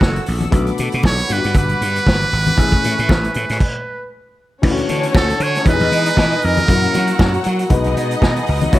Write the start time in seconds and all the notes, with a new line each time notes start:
Already playing: E3 A3 C#4 F#4 A4 F#5 C#6 E6
0.01 F#1, kick, snare, high conga
0.16 closed hi-hat
0.26 A#1, open hi-hat
0.41 closed hi-hat, high conga
0.51 B1 D3 A3 B3 F#4 A4 F#5 B5 D6, kick, closed hi-hat
0.67 closed hi-hat
0.78 B2, closed hi-hat, muted conga
0.92 B2, closed hi-hat
1.03 B1 C#5, kick, snare, high conga
1.19 closed hi-hat
1.29 G2 D3 G3 B3 F4 B4 D6, closed hi-hat
1.37 F#4
1.44 G2, closed hi-hat
1.54 G1, kick, closed hi-hat, muted conga
1.58 B4
1.69 closed hi-hat
1.81 G2, closed hi-hat
1.96 closed hi-hat
2.07 G1, kick, snare, high conga
2.21 closed hi-hat
2.31 G#1, open hi-hat
2.46 closed hi-hat, high conga
2.56 A1 E3 A3 C#4 G#4 E5 G#5 C#6, kick, closed hi-hat
2.72 kick, closed hi-hat
2.84 A2, closed hi-hat, muted conga
2.98 A2, closed hi-hat
3.09 A1, kick, snare, high conga
3.24 closed hi-hat
3.34 A2, closed hi-hat
3.49 A2, snare, closed hi-hat
3.60 kick, crash
4.62 D2 E3 A3 C#4 D4 E4 A4 C#5 F#5 A5, kick, crash
4.71 F#4
4.77 closed hi-hat
4.89 D3, closed hi-hat, muted conga
5.03 closed hi-hat
5.15 D2 A4, kick, snare, high conga
5.30 closed hi-hat
5.40 D3 C#5, closed hi-hat
5.55 snare, closed hi-hat
5.64 E2 E3 G#3 B3 D#4 G4 B4 D#5 G#5 D#6, kick, closed hi-hat, muted conga
5.69 B4
5.73 G#4
5.80 E2, closed hi-hat
5.92 E3, closed hi-hat, muted conga
6.06 closed hi-hat
6.17 E3, kick, snare, high conga
6.32 closed hi-hat
6.42 F2 A#4, open hi-hat
6.57 closed hi-hat, high conga
6.67 F#2 F#3 A#3 C#4 E4 F#4 A#4 C#5 F#5 A#5 E6, kick, closed hi-hat
6.82 closed hi-hat
6.94 F#3, closed hi-hat, muted conga
7.07 closed hi-hat
7.19 F#2, kick, snare, high conga
7.34 closed hi-hat
7.44 F#3, closed hi-hat
7.59 closed hi-hat
7.69 B1 G#3 B3 D#4 F#4 B4 D#5 F#5 G#5 D#6, kick, closed hi-hat, muted conga
7.84 B1, closed hi-hat
7.97 B2, closed hi-hat
8.11 closed hi-hat
8.22 B2, kick, snare, high conga
8.36 closed hi-hat
8.46 C#2, open hi-hat
8.61 closed hi-hat, high conga
8.72 D2 A3 D4 E4 F#4 C#5 F#5 C#6 E6, kick, closed hi-hat